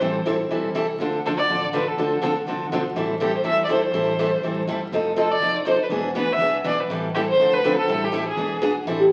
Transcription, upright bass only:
0.00 A1
0.25 A1
0.49 B1
0.73 C2
0.98 D2
1.48 A1
1.97 D2
2.21 D2
2.45 C2
2.69 B1
2.93 A1
3.43 E2
3.91 A1
4.41 A1
4.67 G1
4.91 F1
5.40 C2
5.89 E1
6.14 D2
6.38 C2
6.64 B1
6.88 A1
7.37 D2
7.88 A1
8.36 E1
8.85 A1

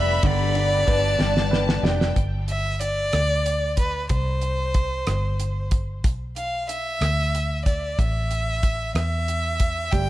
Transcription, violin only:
Already playing: E5
0.26 D5
2.49 E5
2.82 D5
3.79 B4
4.10 C5
6.37 F5
6.70 E5
7.65 D5
7.99 E5
8.96 E5
9.92 G5

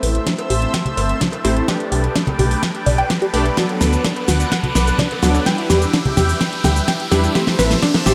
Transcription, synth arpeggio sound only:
0.03 B4
0.27 D4
0.50 G4
0.74 G5
0.97 C5
1.21 D4
1.45 G4
1.68 G5
1.92 G4
2.15 D4
2.39 G4
2.63 G5
2.86 D5
2.98 G5
3.10 B4
3.22 G4
3.34 B4
3.57 F#4
3.81 B4
4.04 D4
4.28 F#4
4.52 F#5
4.75 B4
4.99 D4
5.23 F#4
5.46 G5
5.70 G4
5.94 D4
6.17 G4
6.41 G5
6.64 G4
6.88 G5
7.12 G4
7.35 G4
7.59 B4
7.82 D4
8.06 G4

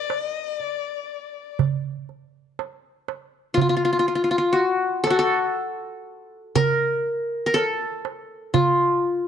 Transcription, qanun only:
3.54 F4
3.61 F4
3.69 F4
3.77 F4
3.85 F4
3.93 F4
3.99 F4
4.08 F4
4.15 F4
4.24 F4
4.31 F4
4.38 F4
4.53 F#4
5.04 A4
5.10 F#4
5.19 A4
6.55 A#4
7.46 A#4
7.54 A4
8.54 F4

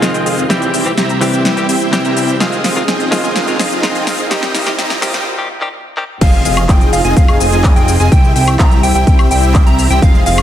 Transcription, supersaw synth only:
Already playing: C4 F4 G#4 D#5 F5
0.14 C4 F4 G#4 D#5 G5
0.26 C4 F4 G#4 D#5 F5
0.50 C4 E4 G4 E5 G5
0.74 C4 E4 G4 E5 G5
0.97 C4 E4 G4 E5 A#5
1.21 C4 E4 G4 E5 G5
1.33 C4 E4 G4 E5 G5
1.45 C4 E4 G4 E5 G5
1.69 C4 E4 G4 E5 G5
2.05 C4 E4 G4 E5 A#5
2.17 C4 E4 G4 E5 G5
2.40 C4 F4 G#4 D#5 F5
2.64 C4 F4 G#4 D#5 F5
2.88 C4 F4 G#4 D#5 G5
3.12 C4 F4 G#4 D#5 F5
3.24 C4 F4 G#4 D#5 G#5
3.36 C4 F4 G#4 D#5 F5
3.59 C4 F4 G#4 D#5 F5
3.95 C4 F4 G#4 D#5 G5
4.07 C4 F4 G#4 D#5 F5
4.31 C4 D#4 G4 D#5 G5
4.55 C4 D#4 G4 D#5 F5
4.78 C4 D#4 G4 D#5 A#5
5.02 C4 D#4 G4 D#5 F5
5.14 C4 D#4 G4 D#5 G5
6.21 C4 F4 G#4 D#5 F5
6.45 C4 F4 G#4 D#5 F5
6.69 C4 F4 G#4 D#5 G5
6.93 C4 F4 G#4 D#5 F5
7.05 C4 F4 G#4 D#5 G#5
7.17 F4 G#4 F5
7.40 C4 F4 G#4 D#5 G#5
7.76 C4 F4 G#4 D#5 G5
8.00 C4 F4 G#4 D#5 G#5
8.12 E4 G4 E5 G5
8.36 C4 E4 G4 E5 G5
8.60 C4 E4 G4 E5 A#5
8.83 C4 E4 G4 E5 G5
8.95 C4 E4 G4 E5 G5
9.07 C4 E4 G4 E5 G5
9.31 C4 E4 G4 E5 G5
9.67 C4 E4 G4 E5 A#5
9.90 C4 E4 G4 E5 G5
10.02 C4 F4 G#4 D#5 F5
10.26 C4 F4 G#4 D#5 F5

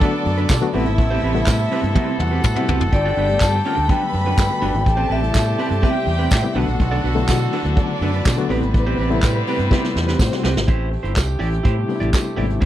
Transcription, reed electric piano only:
Already playing: B3 F#4 A4
0.00 D3 F#3 A3 B3 F#4
0.61 D3 F#3 A3 B3 F#4
0.73 C3 G3 A3 B3 E4
1.34 C3 G3 A3 B3 E4
1.94 C3 G3 A3 B3 E4
2.55 C3 G3 A3 B3 E4
3.28 D3 G3 A3 B3 G4
3.89 D3 F#3 G3 A3 B3
4.49 D3 G3 A3 B3 F#4
5.22 C3 G3 A3 B3 E4
5.81 C3 G3 A3 B3 G4
6.42 C3 G3 A3 B3 E4
6.55 D3 F#3 A3 B3 F#4
7.15 D3 F#3 A3 B3 E4
7.23 F#4
7.75 C#3 F#3 A3 B3 F#4
7.81 D3
8.37 D3 F#3 A3 B3 F#4
8.49 C3 G3 A3 B3 E4
9.09 C3 G3 A3 B3 E4
9.70 C3 G3 A3 B3 E4
10.31 C3 G3 A3 C4 F#4
11.77 C3 G3 A3 B3 E4
11.88 C3 G3 A3 B3 D4
11.96 E4
12.37 C3 G3 A3 B3 E4

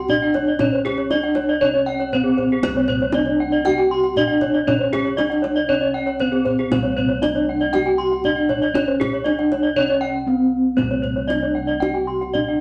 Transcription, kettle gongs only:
Already playing: C2
0.09 C#4
0.60 C#4
1.10 C#4
1.62 C3
2.13 C#4
2.63 C4
2.68 C2
3.14 C#4
4.16 C#4
4.67 C#4
5.19 C#4
5.69 C3
6.21 C#4
6.71 C4
6.76 C2
7.22 C#4
8.24 C#4
8.74 C#4
9.25 C#4
9.76 C3
10.27 C#4
10.77 C4
10.82 C2
11.28 C#4
12.35 C#4

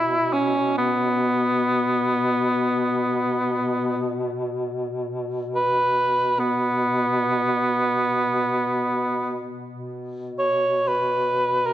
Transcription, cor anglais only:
Already playing: E4
0.33 C#4
0.78 B3
5.56 B4
6.39 B3
10.39 C#5
10.88 B4
11.66 A#4

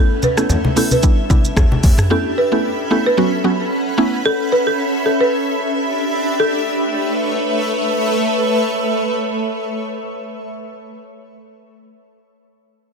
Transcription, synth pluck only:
Already playing: A3 B3 C#4 E4
0.37 A3 B3 C#4 E4
0.76 A3 B3 C#4 E4
1.03 G3 B3 D4 E4
1.30 G3 B3 D4 E4
2.10 A3 B3 C#4 E4
2.52 A3 B3 C#4 E4
2.91 A3 B3 C#4 E4
3.17 F#3 B3 C#4 F#4
3.44 F#3 B3 C#4 F#4
3.98 A3 B3 C#4 E4

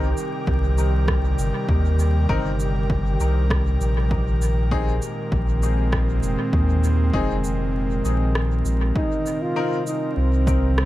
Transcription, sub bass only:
Already playing: C2
0.47 C2
1.39 G1
1.68 D#2
2.29 G1
3.20 C2
3.81 A#1
5.32 A#1
6.23 F1
6.53 D#2
7.13 F1
8.05 A#1
8.65 A#1
10.17 C2

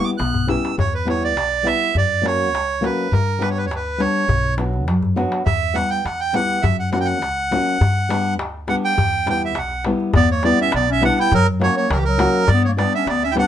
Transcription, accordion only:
0.04 D6
0.18 F#6
0.49 E6
0.79 C#5
0.94 B4
1.09 C#5
1.24 D5
1.67 E5
1.98 D5
2.26 C#5
2.85 B4
3.12 A#4
3.41 B4
3.51 C#5
3.58 B4
3.66 C#5
3.76 B4
4.00 C#5
5.46 E5
5.74 F#5
5.90 G5
6.05 F#5
6.20 G5
6.35 F#5
6.62 E5
6.79 F#5
6.91 F#5
7.00 G5
7.05 F#5
8.69 F#5
8.85 G5
9.30 G5
9.45 E5
9.58 F#5
10.16 D5
10.31 C#5
10.44 D5
10.61 E5
10.76 D5
10.92 E5
11.05 F#5
11.20 G5
11.34 A#4
11.63 C#5
11.77 C#5
11.91 A#4
11.96 G4
12.04 A#4
12.48 D5
12.65 C#5
12.78 D5
12.95 E5
13.08 D5
13.23 E5
13.31 G5
13.39 F#5

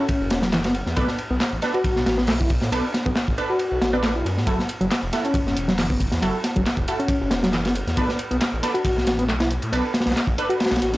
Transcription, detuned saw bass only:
0.22 F#1
0.31 E1
0.53 F#1
0.87 E2
0.97 B1
1.30 B1
1.53 A1
1.84 B1
1.97 B1
2.07 A1
2.29 B1
2.63 A2
2.72 B1
3.06 B1
3.28 A1
3.72 B1
3.82 A1
4.15 B1
4.25 F#2
4.37 A2
4.47 F#1
4.81 F#1
5.03 E1
5.34 F#1
5.47 F#1
5.57 E1
5.79 F#1
6.13 E2
6.23 F#1
6.57 F#1
6.77 E1
7.22 F#1
7.32 E1
7.53 F#1
7.87 E2
7.97 B1
8.31 B1
8.53 A1
8.85 B1
8.97 B1
9.07 A1
9.29 B1
9.63 A2
9.73 B1
10.07 B1
10.27 A1
10.72 B1
10.82 A1

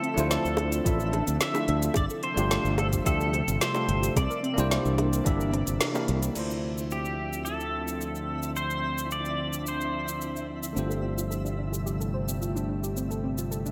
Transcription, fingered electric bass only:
0.17 D2
0.45 D2
0.86 A1
1.28 D2
1.69 D2
1.96 G1
2.37 G1
2.65 G1
3.06 D2
3.48 G1
3.89 G1
4.16 C2
4.58 C2
4.86 C2
5.27 G1
5.68 G1
6.09 C2
6.36 D2
10.77 G1

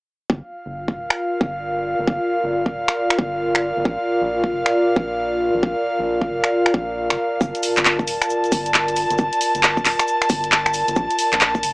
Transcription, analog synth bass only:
0.30 G1
0.66 G1
0.96 D1
1.41 G1
1.99 G1
2.08 G1
2.44 G1
2.74 D1
3.19 G1
3.77 G1
3.85 A#1
4.22 A#1
4.52 F1
4.96 A#1
5.55 A#1
5.63 A#1
5.99 A#1
6.30 F1
6.74 A#1
7.11 F1
7.41 G1
7.77 G1
8.08 D1
8.52 G1
9.11 G1
9.19 G1
9.55 G1
9.85 D1
10.30 G1
10.88 G1
10.96 A#1
11.33 A#1
11.63 F1

